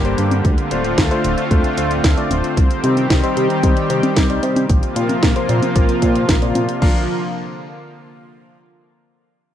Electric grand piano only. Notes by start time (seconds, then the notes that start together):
0.05 G3 A#3 D4 C5
0.71 A3 D4 F4 C5
1.11 A3 D4 F4 C5
1.51 A3 D4 F4 C5
1.77 A3 D4 F4 C5
2.17 A3 D4 F4 D5
2.84 G3 C4 D#4 C5
3.23 G3 C4 D#4 C5
3.63 G3 C4 D#4 C5
3.90 G3 C4 D#4 C5
4.30 G3 C4 D#4 D5
4.96 A#3 C4 F4 C5
5.36 A#3 C4 F4 C5
5.76 A#3 C4 F4 C5
6.02 A#3 C4 F4 C5
6.42 A#3 C4 F4 D5
6.82 D4 F4 A#4 F5